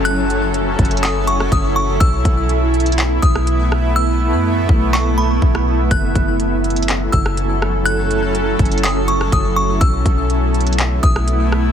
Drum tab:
HH |x---x---x---xxxxx---x---x-------|x---x---x---xxxxx---x---x-------|--------------------------------|x---x---x---xxxxx---x---x-------|
CP |----------------x---------------|----------------x---------------|----------------x---------------|----------------x---------------|
SD |----------------------r---------|----------------------r-----r---|--------------------------r-----|----------------------r-----r---|
BD |------------o-----------o-------|o---o---------------o-----------|------------o-----------o-------|o---o---------------o-----------|

HH |x---x---x---xxxxx---x---x-------|x---x---x---xxxxx---x---x-------|
CP |----------------x---------------|----------------x---------------|
SD |----------------------r---------|----------------------r-----r---|
BD |------------o-----------o-------|o---o---------------o-----------|